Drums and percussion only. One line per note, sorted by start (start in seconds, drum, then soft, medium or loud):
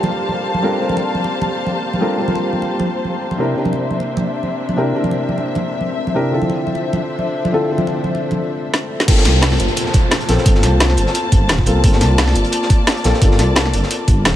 0.03 muted conga medium
0.03 high conga medium
0.29 high conga medium
0.54 high conga medium
0.89 high conga medium
0.97 muted conga medium
1.15 high conga medium
1.24 muted conga medium
1.41 muted conga medium
1.41 high conga medium
1.66 high conga medium
1.93 high conga medium
2.28 high conga medium
2.35 muted conga medium
2.53 high conga medium
2.62 muted conga medium
2.79 muted conga medium
2.79 high conga medium
3.05 high conga medium
3.31 high conga medium
3.65 high conga medium
3.73 muted conga medium
3.91 high conga medium
4.00 muted conga soft
4.17 muted conga medium
4.17 high conga medium
4.43 high conga medium
4.69 high conga medium
5.04 high conga medium
5.11 muted conga medium
5.29 high conga medium
5.38 muted conga soft
5.55 muted conga medium
5.55 high conga medium
5.81 high conga medium
6.07 high conga medium
6.42 high conga medium
6.50 muted conga medium
6.67 high conga medium
6.75 muted conga soft
6.93 muted conga medium
6.93 high conga medium
7.18 high conga medium
7.45 high conga medium
7.78 high conga medium
7.87 muted conga medium
8.04 high conga medium
8.15 muted conga soft
8.31 muted conga medium
8.31 high conga medium
8.74 snare loud
9.00 snare medium
9.08 kick loud
9.08 closed hi-hat loud
9.08 closed hi-hat medium
9.08 crash loud
9.17 snare soft
9.25 snare soft
9.25 closed hi-hat medium
9.42 snare loud
9.42 closed hi-hat medium
9.42 open hi-hat medium
9.52 snare soft
9.60 closed hi-hat medium
9.68 closed hi-hat soft
9.77 closed hi-hat medium
9.77 closed hi-hat loud
9.86 snare soft
9.94 kick loud
9.94 closed hi-hat medium
10.11 snare loud
10.11 closed hi-hat loud
10.11 closed hi-hat medium
10.20 closed hi-hat soft
10.29 snare medium
10.29 closed hi-hat medium
10.38 snare soft
10.46 kick loud
10.46 closed hi-hat medium
10.55 snare soft
10.63 snare soft
10.63 closed hi-hat medium
10.80 snare loud
10.80 closed hi-hat medium
10.80 closed hi-hat loud
10.90 snare soft
10.97 closed hi-hat medium
11.07 snare soft
11.15 closed hi-hat medium
11.15 closed hi-hat loud
11.32 kick loud
11.32 closed hi-hat medium
11.49 snare loud
11.49 closed hi-hat medium
11.49 closed hi-hat loud
11.59 kick medium
11.66 closed hi-hat medium
11.84 kick loud
11.84 closed hi-hat medium
11.84 closed hi-hat loud
11.93 snare soft
12.01 snare soft
12.01 closed hi-hat medium
12.18 snare loud
12.18 closed hi-hat medium
12.18 open hi-hat medium
12.28 snare soft
12.35 closed hi-hat medium
12.44 closed hi-hat soft
12.52 closed hi-hat medium
12.62 snare soft
12.70 kick loud
12.70 closed hi-hat medium
12.87 snare loud
12.87 closed hi-hat medium
12.97 closed hi-hat soft
13.04 snare medium
13.04 closed hi-hat medium
13.14 snare soft
13.22 kick loud
13.22 closed hi-hat medium
13.31 snare soft
13.39 snare soft
13.39 closed hi-hat medium
13.56 snare loud
13.56 closed hi-hat medium
13.65 snare soft
13.74 closed hi-hat medium
13.83 snare soft
13.91 closed hi-hat medium
14.08 kick loud
14.08 closed hi-hat medium
14.25 snare loud
14.25 closed hi-hat medium